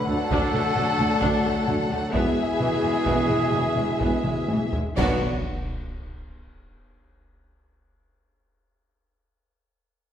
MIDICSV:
0, 0, Header, 1, 14, 480
1, 0, Start_track
1, 0, Key_signature, 2, "minor"
1, 0, Tempo, 460123
1, 2232, Time_signature, 12, 3, 24, 8
1, 3683, Tempo, 481155
1, 10265, End_track
2, 0, Start_track
2, 0, Title_t, "Violin section"
2, 0, Program_c, 0, 48
2, 0, Note_on_c, 0, 78, 100
2, 2189, Note_off_c, 0, 78, 0
2, 2217, Note_on_c, 0, 76, 105
2, 4864, Note_off_c, 0, 76, 0
2, 5122, Note_on_c, 0, 74, 93
2, 5389, Note_off_c, 0, 74, 0
2, 10265, End_track
3, 0, Start_track
3, 0, Title_t, "Trumpet"
3, 0, Program_c, 1, 56
3, 76, Note_on_c, 1, 69, 112
3, 1938, Note_off_c, 1, 69, 0
3, 2232, Note_on_c, 1, 68, 103
3, 4839, Note_off_c, 1, 68, 0
3, 5122, Note_on_c, 1, 66, 105
3, 5322, Note_off_c, 1, 66, 0
3, 10265, End_track
4, 0, Start_track
4, 0, Title_t, "Violin section"
4, 0, Program_c, 2, 48
4, 84, Note_on_c, 2, 69, 119
4, 2229, Note_on_c, 2, 68, 107
4, 2234, Note_off_c, 2, 69, 0
4, 4869, Note_off_c, 2, 68, 0
4, 5123, Note_on_c, 2, 66, 97
4, 5390, Note_off_c, 2, 66, 0
4, 10265, End_track
5, 0, Start_track
5, 0, Title_t, "French horn section"
5, 0, Program_c, 3, 60
5, 0, Note_on_c, 3, 57, 85
5, 0, Note_on_c, 3, 62, 105
5, 2036, Note_off_c, 3, 57, 0
5, 2036, Note_off_c, 3, 62, 0
5, 2213, Note_on_c, 3, 59, 98
5, 2222, Note_on_c, 3, 64, 106
5, 4830, Note_off_c, 3, 59, 0
5, 4834, Note_off_c, 3, 64, 0
5, 5123, Note_on_c, 3, 59, 97
5, 5128, Note_on_c, 3, 62, 91
5, 5323, Note_off_c, 3, 59, 0
5, 5326, Note_off_c, 3, 62, 0
5, 10265, End_track
6, 0, Start_track
6, 0, Title_t, "Viola section"
6, 0, Program_c, 4, 48
6, 80, Note_on_c, 4, 57, 75
6, 164, Note_off_c, 4, 57, 0
6, 322, Note_on_c, 4, 62, 125
6, 544, Note_off_c, 4, 62, 0
6, 555, Note_on_c, 4, 57, 95
6, 639, Note_off_c, 4, 57, 0
6, 793, Note_on_c, 4, 54, 93
6, 876, Note_off_c, 4, 54, 0
6, 1030, Note_on_c, 4, 57, 95
6, 1113, Note_off_c, 4, 57, 0
6, 1265, Note_on_c, 4, 62, 127
6, 1492, Note_off_c, 4, 62, 0
6, 1515, Note_on_c, 4, 57, 112
6, 1599, Note_off_c, 4, 57, 0
6, 1737, Note_on_c, 4, 54, 100
6, 1821, Note_off_c, 4, 54, 0
6, 1985, Note_on_c, 4, 57, 105
6, 2068, Note_off_c, 4, 57, 0
6, 2221, Note_on_c, 4, 59, 113
6, 2449, Note_off_c, 4, 59, 0
6, 2717, Note_on_c, 4, 52, 71
6, 2800, Note_off_c, 4, 52, 0
6, 2953, Note_on_c, 4, 56, 84
6, 3037, Note_off_c, 4, 56, 0
6, 3190, Note_on_c, 4, 59, 108
6, 3419, Note_off_c, 4, 59, 0
6, 3439, Note_on_c, 4, 56, 87
6, 3523, Note_off_c, 4, 56, 0
6, 3682, Note_on_c, 4, 52, 82
6, 3762, Note_off_c, 4, 52, 0
6, 3907, Note_on_c, 4, 56, 73
6, 3986, Note_off_c, 4, 56, 0
6, 4149, Note_on_c, 4, 59, 90
6, 4373, Note_off_c, 4, 59, 0
6, 4393, Note_on_c, 4, 56, 69
6, 4473, Note_off_c, 4, 56, 0
6, 4640, Note_on_c, 4, 52, 69
6, 4720, Note_off_c, 4, 52, 0
6, 4883, Note_on_c, 4, 56, 71
6, 4963, Note_off_c, 4, 56, 0
6, 5124, Note_on_c, 4, 59, 100
6, 5391, Note_off_c, 4, 59, 0
6, 10265, End_track
7, 0, Start_track
7, 0, Title_t, "Trombone section"
7, 0, Program_c, 5, 61
7, 0, Note_on_c, 5, 50, 92
7, 0, Note_on_c, 5, 54, 106
7, 2195, Note_off_c, 5, 54, 0
7, 2230, Note_off_c, 5, 50, 0
7, 2230, Note_on_c, 5, 52, 102
7, 2238, Note_on_c, 5, 47, 101
7, 4842, Note_off_c, 5, 47, 0
7, 4878, Note_off_c, 5, 52, 0
7, 5117, Note_on_c, 5, 47, 100
7, 5131, Note_on_c, 5, 54, 98
7, 5319, Note_off_c, 5, 47, 0
7, 5329, Note_off_c, 5, 54, 0
7, 10265, End_track
8, 0, Start_track
8, 0, Title_t, "Timpani"
8, 0, Program_c, 6, 47
8, 5126, Note_on_c, 6, 47, 109
8, 5347, Note_off_c, 6, 47, 0
8, 10265, End_track
9, 0, Start_track
9, 0, Title_t, "Cello section"
9, 0, Program_c, 7, 48
9, 84, Note_on_c, 7, 38, 86
9, 168, Note_off_c, 7, 38, 0
9, 321, Note_on_c, 7, 38, 127
9, 404, Note_off_c, 7, 38, 0
9, 559, Note_on_c, 7, 38, 88
9, 642, Note_off_c, 7, 38, 0
9, 799, Note_on_c, 7, 38, 90
9, 883, Note_off_c, 7, 38, 0
9, 1040, Note_on_c, 7, 38, 101
9, 1123, Note_off_c, 7, 38, 0
9, 1272, Note_on_c, 7, 38, 127
9, 1356, Note_off_c, 7, 38, 0
9, 1513, Note_on_c, 7, 38, 91
9, 1597, Note_off_c, 7, 38, 0
9, 1754, Note_on_c, 7, 38, 98
9, 1837, Note_off_c, 7, 38, 0
9, 1992, Note_on_c, 7, 38, 84
9, 2076, Note_off_c, 7, 38, 0
9, 2230, Note_on_c, 7, 40, 122
9, 2314, Note_off_c, 7, 40, 0
9, 2707, Note_on_c, 7, 40, 90
9, 2790, Note_off_c, 7, 40, 0
9, 2952, Note_on_c, 7, 40, 77
9, 3036, Note_off_c, 7, 40, 0
9, 3198, Note_on_c, 7, 40, 119
9, 3281, Note_off_c, 7, 40, 0
9, 3437, Note_on_c, 7, 40, 75
9, 3520, Note_off_c, 7, 40, 0
9, 3676, Note_on_c, 7, 40, 76
9, 3756, Note_off_c, 7, 40, 0
9, 3915, Note_on_c, 7, 40, 81
9, 3995, Note_off_c, 7, 40, 0
9, 4160, Note_on_c, 7, 40, 92
9, 4239, Note_off_c, 7, 40, 0
9, 4401, Note_on_c, 7, 40, 61
9, 4480, Note_off_c, 7, 40, 0
9, 4637, Note_on_c, 7, 40, 68
9, 4717, Note_off_c, 7, 40, 0
9, 4887, Note_on_c, 7, 40, 58
9, 4966, Note_off_c, 7, 40, 0
9, 5130, Note_on_c, 7, 47, 117
9, 5394, Note_off_c, 7, 47, 0
9, 10265, End_track
10, 0, Start_track
10, 0, Title_t, "Double bass section"
10, 0, Program_c, 8, 48
10, 79, Note_on_c, 8, 38, 86
10, 163, Note_off_c, 8, 38, 0
10, 325, Note_on_c, 8, 38, 119
10, 408, Note_off_c, 8, 38, 0
10, 571, Note_on_c, 8, 38, 95
10, 655, Note_off_c, 8, 38, 0
10, 805, Note_on_c, 8, 38, 84
10, 888, Note_off_c, 8, 38, 0
10, 1040, Note_on_c, 8, 38, 83
10, 1123, Note_off_c, 8, 38, 0
10, 1283, Note_on_c, 8, 38, 126
10, 1367, Note_off_c, 8, 38, 0
10, 1515, Note_on_c, 8, 38, 88
10, 1598, Note_off_c, 8, 38, 0
10, 1764, Note_on_c, 8, 38, 92
10, 1848, Note_off_c, 8, 38, 0
10, 1997, Note_on_c, 8, 38, 81
10, 2081, Note_off_c, 8, 38, 0
10, 2242, Note_on_c, 8, 28, 127
10, 2325, Note_off_c, 8, 28, 0
10, 2721, Note_on_c, 8, 28, 84
10, 2804, Note_off_c, 8, 28, 0
10, 2960, Note_on_c, 8, 28, 78
10, 3043, Note_off_c, 8, 28, 0
10, 3201, Note_on_c, 8, 28, 106
10, 3285, Note_off_c, 8, 28, 0
10, 3443, Note_on_c, 8, 28, 75
10, 3526, Note_off_c, 8, 28, 0
10, 3688, Note_on_c, 8, 28, 74
10, 3768, Note_off_c, 8, 28, 0
10, 3911, Note_on_c, 8, 28, 75
10, 3991, Note_off_c, 8, 28, 0
10, 4153, Note_on_c, 8, 28, 102
10, 4232, Note_off_c, 8, 28, 0
10, 4393, Note_on_c, 8, 28, 68
10, 4473, Note_off_c, 8, 28, 0
10, 4626, Note_on_c, 8, 28, 63
10, 4706, Note_off_c, 8, 28, 0
10, 4876, Note_on_c, 8, 28, 60
10, 4955, Note_off_c, 8, 28, 0
10, 5120, Note_on_c, 8, 35, 123
10, 5388, Note_off_c, 8, 35, 0
10, 10265, End_track
11, 0, Start_track
11, 0, Title_t, "Tuba"
11, 0, Program_c, 10, 58
11, 85, Note_on_c, 10, 38, 95
11, 180, Note_off_c, 10, 38, 0
11, 313, Note_on_c, 10, 38, 127
11, 410, Note_off_c, 10, 38, 0
11, 557, Note_on_c, 10, 38, 95
11, 653, Note_off_c, 10, 38, 0
11, 806, Note_on_c, 10, 38, 91
11, 900, Note_off_c, 10, 38, 0
11, 1041, Note_on_c, 10, 38, 92
11, 1136, Note_off_c, 10, 38, 0
11, 1283, Note_on_c, 10, 38, 119
11, 1377, Note_off_c, 10, 38, 0
11, 1510, Note_on_c, 10, 38, 78
11, 1606, Note_off_c, 10, 38, 0
11, 1750, Note_on_c, 10, 38, 97
11, 1847, Note_off_c, 10, 38, 0
11, 1989, Note_on_c, 10, 38, 87
11, 2085, Note_off_c, 10, 38, 0
11, 2227, Note_on_c, 10, 28, 124
11, 2324, Note_off_c, 10, 28, 0
11, 2712, Note_on_c, 10, 28, 85
11, 2808, Note_off_c, 10, 28, 0
11, 2957, Note_on_c, 10, 28, 87
11, 3053, Note_off_c, 10, 28, 0
11, 3187, Note_on_c, 10, 28, 114
11, 3286, Note_off_c, 10, 28, 0
11, 3437, Note_on_c, 10, 28, 84
11, 3535, Note_off_c, 10, 28, 0
11, 3684, Note_on_c, 10, 28, 83
11, 3778, Note_off_c, 10, 28, 0
11, 3917, Note_on_c, 10, 28, 77
11, 4012, Note_off_c, 10, 28, 0
11, 4161, Note_on_c, 10, 28, 96
11, 4255, Note_off_c, 10, 28, 0
11, 4387, Note_on_c, 10, 28, 61
11, 4484, Note_off_c, 10, 28, 0
11, 4633, Note_on_c, 10, 28, 71
11, 4731, Note_off_c, 10, 28, 0
11, 4879, Note_on_c, 10, 28, 57
11, 4977, Note_off_c, 10, 28, 0
11, 5118, Note_on_c, 10, 35, 106
11, 5320, Note_off_c, 10, 35, 0
11, 10265, End_track
12, 0, Start_track
12, 0, Title_t, "Sub drop"
12, 0, Program_c, 11, 103
12, 5127, Note_on_c, 11, 60, 100
12, 8004, Note_off_c, 11, 60, 0
12, 10265, End_track
13, 0, Start_track
13, 0, Title_t, "Taiko and cinematic ensemble drums"
13, 319, Note_on_c, 9, 41, 107
13, 423, Note_off_c, 9, 41, 0
13, 563, Note_on_c, 9, 47, 64
13, 668, Note_off_c, 9, 47, 0
13, 797, Note_on_c, 9, 47, 79
13, 901, Note_off_c, 9, 47, 0
13, 1033, Note_on_c, 9, 47, 64
13, 1137, Note_off_c, 9, 47, 0
13, 1268, Note_on_c, 9, 41, 95
13, 1372, Note_off_c, 9, 41, 0
13, 1754, Note_on_c, 9, 47, 82
13, 1858, Note_off_c, 9, 47, 0
13, 1992, Note_on_c, 9, 37, 49
13, 2097, Note_off_c, 9, 37, 0
13, 2231, Note_on_c, 9, 41, 105
13, 2335, Note_off_c, 9, 41, 0
13, 2715, Note_on_c, 9, 47, 78
13, 2820, Note_off_c, 9, 47, 0
13, 3191, Note_on_c, 9, 41, 90
13, 3295, Note_off_c, 9, 41, 0
13, 3433, Note_on_c, 9, 47, 63
13, 3537, Note_off_c, 9, 47, 0
13, 3671, Note_on_c, 9, 47, 73
13, 3772, Note_off_c, 9, 47, 0
13, 3909, Note_on_c, 9, 47, 64
13, 4009, Note_off_c, 9, 47, 0
13, 4158, Note_on_c, 9, 41, 100
13, 4258, Note_off_c, 9, 41, 0
13, 4392, Note_on_c, 9, 47, 99
13, 4492, Note_off_c, 9, 47, 0
13, 4634, Note_on_c, 9, 48, 104
13, 4734, Note_off_c, 9, 48, 0
13, 4878, Note_on_c, 9, 43, 104
13, 4977, Note_off_c, 9, 43, 0
13, 5127, Note_on_c, 9, 41, 101
13, 5226, Note_off_c, 9, 41, 0
13, 10265, End_track
14, 0, Start_track
14, 0, Title_t, "Drums"
14, 5127, Note_on_c, 9, 35, 81
14, 5127, Note_on_c, 9, 49, 75
14, 5227, Note_off_c, 9, 35, 0
14, 5227, Note_off_c, 9, 49, 0
14, 10265, End_track
0, 0, End_of_file